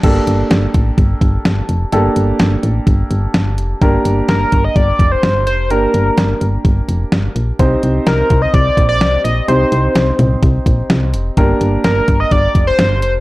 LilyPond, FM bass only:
\new Staff \with { instrumentName = "FM bass" } { \clef bass \time 4/4 \key g \minor \tempo 4 = 127 g,,8 g,,8 g,,8 a,,8 g,,8 g,,8 g,,8 f,,8 | g,,8 g,,8 g,,8 a,,8 g,,8 g,,8 g,,8 f,,8 | g,,8 g,,8 g,,8 g,,8 g,,8 f,,8 g,,8 f,,8 | g,,8 g,,8 g,,8 g,,8 g,,8 f,,8 g,,8 bes,,8 |
c,8 c,8 c,8 c,8 c,8 bes,,8 c,8 bes,,8 | c,8 c,8 c,8 c,8 c,8 bes,,8 c,8 f,,8 | g,,8 g,,8 g,,8 g,,8 g,,8 f,,8 g,,8 f,,8 | }